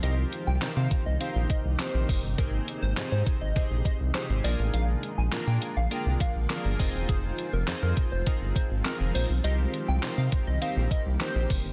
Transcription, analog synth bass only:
\new Staff \with { instrumentName = "Analog synth bass" } { \clef bass \time 4/4 \key c \minor \tempo 4 = 102 c,8 r16 c,16 c16 c16 r16 c,16 r16 bes,,16 r16 c,16 r16 bes,,16 fis,,16 g,,16 | aes,,8 r16 aes,,16 aes,16 aes,16 r16 aes,,16 r16 bes,,16 r16 c,16 r16 aes,,16 bes,,16 a,,16 | bes,,8 r16 bes,,16 bes,16 bes,16 r16 bes,,16 r16 c,16 r16 bes,,16 r16 g,,16 f,,16 e,,16 | f,,8 r16 f,,16 f,16 f,16 r16 f,,16 r16 g,,16 r16 aes,,16 r16 f,,16 bes,,16 b,,16 |
c,8 r16 c,16 c16 c16 r16 c,16 r16 bes,,16 r16 c,16 r16 bes,,16 fis,,16 g,,16 | }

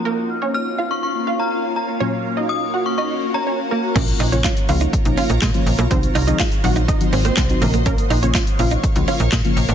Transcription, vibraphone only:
\new Staff \with { instrumentName = "Vibraphone" } { \time 4/4 \key bes \minor \tempo 4 = 123 bes16 f'16 f'''16 bes16 f'16 r8. f'''16 bes16 f'16 f'''16 r8. bes16 | r8 bes16 ges'16 r8 ges'16 f'''16 bes16 r4 r16 bes16 ges'16 | r1 | r1 |
r1 | }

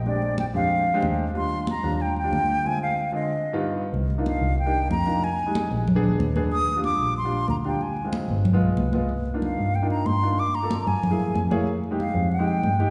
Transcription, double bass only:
\new Staff \with { instrumentName = "Double bass" } { \clef bass \time 4/4 \key ees \major \tempo 4 = 186 bes,,4. f,4. ees,4~ | ees,4. ees,4. d,4~ | d,4. r2 r8 | \key c \minor c,4. c,4. f,4~ |
f,4. bes,,4 d,8 ees,4~ | ees,4. bes,,4. d,4~ | d,4. g,,4 b,,8 c,4~ | c,4. g,4. g,4~ |
g,4. fis,4 fis,8 f,4~ | f,4. f,4. g,4 | }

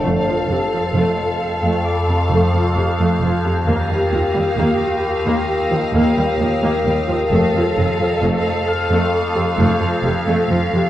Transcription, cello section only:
\new Staff \with { instrumentName = "Cello section" } { \clef bass \time 4/4 \key f \mixolydian \tempo 4 = 66 f,16 f,16 f,16 f,16 f,16 r8 f,16 r16 f,16 f,16 f,16 f,16 f,16 f,16 f,16 | ees,16 ees,16 ees,16 ees,16 ees,16 r8 ees,16 r16 ees,16 ees,16 ees,16 ees,16 ees,16 ees,16 ees,16 | f,16 f,16 f,16 f,16 f,16 r8 f,16 r16 f,16 f,16 f,16 f,16 f,16 f,16 f,16 | }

